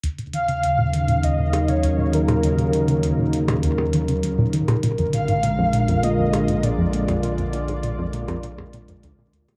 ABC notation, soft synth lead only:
X:1
M:4/4
L:1/16
Q:1/4=100
K:Ebm
V:1 name="Soft synth lead"
z2 f6 e3 d3 B2- | B4 z12 | z2 f6 e4 =d4 | =d12 z4 |]